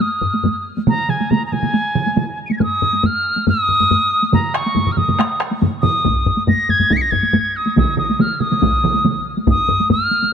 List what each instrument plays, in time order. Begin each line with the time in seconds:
0.00 piccolo D#6, taiko high
0.22 taiko low-mid
0.34 taiko high
0.44 taiko low-mid, taiko high
0.77 taiko high
0.87 piccolo A#5, taiko mid, taiko high
1.09 piccolo G#5, taiko mid
1.20 taiko high
1.30 piccolo A#5, taiko mid, taiko high
1.46 piccolo A#5
1.52 piccolo G#5, taiko mid, taiko high
1.63 taiko mid, taiko high
1.74 taiko high
1.95 taiko mid
2.06 taiko high
2.16 taiko mid, taiko high
2.46 piccolo C#7 D#7, taiko high
2.53 piccolo A#6
2.57 piccolo F6 G#6, taiko low-mid, taiko high
2.63 piccolo D#6
2.82 taiko low-mid
2.93 taiko high
3.03 piccolo F6, taiko low-mid, taiko high
3.36 taiko high
3.47 piccolo D#6, taiko low-mid, taiko high
3.69 taiko low-mid
3.80 taiko low-mid, taiko high
3.91 taiko low-mid, taiko high
4.22 taiko high
4.33 piccolo A#5, taiko low-mid, taiko mid, taiko high
4.54 piccolo C#6, taiko rim
4.66 taiko high
4.75 taiko low-mid, taiko mid, taiko high
4.87 taiko low-mid, taiko mid
4.92 piccolo F6
4.97 piccolo D#6, taiko low-mid, taiko mid, taiko high
5.08 taiko low-mid, taiko mid, taiko high
5.19 taiko rim, taiko high
5.40 taiko rim
5.51 taiko high
5.62 taiko low-mid, taiko mid, taiko high
5.82 piccolo D#6, taiko low-mid, taiko mid
6.05 taiko, taiko low-mid, taiko high
6.26 taiko low-mid
6.37 taiko high
6.48 piccolo A#6, taiko low-mid, taiko high
6.69 piccolo G#6, taiko low-mid, taiko high
6.80 taiko low-mid, taiko high
6.91 piccolo A#6, taiko, taiko high
6.97 piccolo C#7
7.01 piccolo A#6
7.11 piccolo G#6, taiko low-mid
7.23 taiko high
7.33 taiko low-mid, taiko high
7.56 piccolo D#6
7.66 taiko high
7.76 piccolo D#6, taiko, taiko mid, taiko high
7.97 piccolo D#6, taiko mid
8.09 taiko high
8.19 piccolo F6, taiko mid, taiko high
8.34 piccolo F6
8.41 piccolo D#6, taiko mid, taiko high
8.52 taiko mid, taiko high
8.62 taiko, taiko high
8.84 taiko mid
8.94 taiko high
9.05 taiko mid, taiko high
9.37 taiko high
9.47 piccolo D#6, taiko, taiko low-mid, taiko high
9.69 taiko low-mid
9.80 taiko high
9.90 piccolo F6, taiko low-mid, taiko high
10.11 taiko high
10.22 taiko high